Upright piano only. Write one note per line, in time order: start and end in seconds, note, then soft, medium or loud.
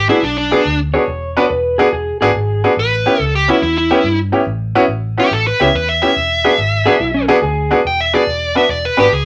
0.09 0.16 B3 medium
0.09 0.16 D4 medium
0.09 0.16 F#4 medium
0.09 0.16 G#4 medium
0.51 0.58 B3 medium
0.51 0.59 D4 medium
0.51 0.59 F#4 medium
0.51 0.59 G#4 medium
0.94 1.01 B3 medium
0.94 1.01 D4 medium
0.94 1.01 F#4 medium
0.94 1.01 G#4 medium
1.37 1.43 B3 medium
1.37 1.44 D4 medium
1.37 1.44 F#4 medium
1.37 1.44 B4 medium
1.79 1.86 B3 medium
1.79 1.86 D4 medium
1.79 1.86 F#4 medium
1.79 1.86 G#4 medium
2.22 2.28 B3 medium
2.22 2.28 D4 medium
2.22 2.29 F#4 medium
2.22 2.29 G#4 loud
2.64 2.71 B3 medium
2.64 2.71 D4 medium
2.64 2.71 F#4 medium
2.64 2.71 G#4 medium
3.06 3.13 B3 medium
3.06 3.13 C#4 medium
3.06 3.13 E4 medium
3.06 3.13 G4 medium
3.48 3.55 B3 medium
3.48 3.55 C#4 medium
3.48 3.55 E4 medium
3.48 3.55 F#4 medium
3.91 3.97 B3 medium
3.91 3.98 C#4 medium
3.91 3.98 E4 medium
3.91 3.98 G4 medium
4.32 4.39 B3 medium
4.32 4.39 C#4 medium
4.32 4.40 E4 medium
4.32 4.40 G4 medium
4.75 4.82 B3 medium
4.75 4.82 C#4 medium
4.75 4.82 E4 medium
4.75 4.82 F#4 loud
5.18 5.24 B3 medium
5.18 5.24 C#4 medium
5.18 5.25 E4 medium
5.18 5.25 F#4 medium
5.60 5.67 B3 medium
5.60 5.67 C#4 medium
5.60 5.67 E4 medium
5.60 5.67 G4 medium
6.02 6.09 B3 medium
6.02 6.09 C#4 medium
6.02 6.09 E4 medium
6.02 6.09 G4 medium
6.44 6.51 B3 medium
6.44 6.51 D4 medium
6.44 6.51 F#4 medium
6.44 6.51 G#4 medium
6.86 6.93 B3 medium
6.86 6.93 D4 medium
6.86 6.93 F#4 medium
6.86 6.93 G#4 medium
7.28 7.35 B3 medium
7.28 7.36 D4 medium
7.28 7.36 F#4 medium
7.28 7.36 G#4 loud
7.71 7.78 B3 medium
7.71 7.78 D4 medium
7.71 7.78 F#4 medium
7.71 7.78 G#4 medium
8.13 8.20 B3 medium
8.13 8.20 D4 medium
8.13 8.20 F#4 medium
8.13 8.21 G#4 medium
8.55 8.62 B3 medium
8.55 8.62 D4 medium
8.55 8.63 F#4 medium
8.55 8.62 B4 medium
8.97 9.04 B3 medium
8.97 9.04 D4 medium
8.97 9.05 F#4 medium
8.97 9.05 B4 medium